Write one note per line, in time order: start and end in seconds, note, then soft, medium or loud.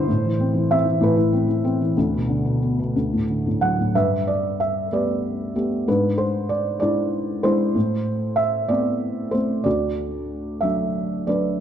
0.00 0.10 G2 soft
0.00 0.11 B2 soft
0.00 0.11 D3 soft
0.00 0.10 G3 soft
0.00 0.11 D4 soft
0.00 0.67 E4 soft
0.00 0.11 B4 soft
0.00 0.73 C5 medium
0.00 0.10 E5 medium
0.08 0.99 A2 medium
0.25 0.53 E3 soft
0.40 0.69 C4 soft
0.54 0.84 E3 soft
0.70 1.31 C4 soft
0.70 1.03 E5 medium
0.85 1.15 E3 soft
1.00 1.93 A2 medium
1.00 3.24 E4 soft
1.00 3.24 B4 medium
1.16 1.46 E3 soft
1.33 1.63 C4 soft
1.48 1.80 E3 soft
1.64 1.95 C4 soft
1.82 1.97 E3 soft
1.97 2.92 D2 medium
2.14 2.43 B2 soft
2.29 2.92 D3 soft
2.45 2.78 B2 soft
2.63 2.94 B3 soft
2.80 2.95 B2 soft
2.96 3.91 D2 soft
3.13 3.45 A2 soft
3.30 3.93 D3 soft
3.47 3.78 A2 soft
3.61 3.93 F#3 soft
3.61 3.92 F#5 medium
3.80 3.94 A2 soft
3.95 5.84 G2 soft
3.95 4.88 B4 soft
3.95 4.28 E5 medium
4.27 4.60 D5 medium
4.60 4.93 E5 medium
4.92 5.54 A3 soft
4.92 5.54 B3 soft
4.92 5.54 G4 soft
4.92 5.84 B4 soft
4.92 5.91 D5 medium
5.55 5.87 A3 soft
5.55 5.86 B3 soft
5.55 5.87 G4 soft
5.88 7.72 G#2 soft
5.88 6.79 D4 soft
5.88 6.21 B4 medium
6.18 6.51 C5 medium
6.49 6.78 D5 medium
6.80 7.42 G#3 soft
6.80 7.42 D4 soft
6.80 7.42 E4 soft
6.80 7.39 D5 medium
7.43 7.74 G#3 soft
7.43 7.75 D4 soft
7.43 8.34 E4 medium
7.43 8.40 C5 medium
7.75 9.61 A2 medium
8.36 8.70 E5 medium
8.68 9.31 A3 soft
8.68 9.31 B3 soft
8.68 9.31 C4 soft
8.68 9.35 D5 medium
9.31 9.65 A3 soft
9.31 9.65 C4 soft
9.31 9.66 C5 medium
9.64 11.56 D2 soft
9.64 10.59 F#4 soft
9.64 10.65 D5 medium
10.61 11.26 F#3 soft
10.61 11.26 A3 soft
10.61 11.26 D4 soft
10.61 11.23 E5 medium
11.27 11.59 F#3 soft
11.27 11.59 A3 soft
11.27 11.60 D4 soft
11.27 11.60 B4 soft
11.27 11.60 D5 medium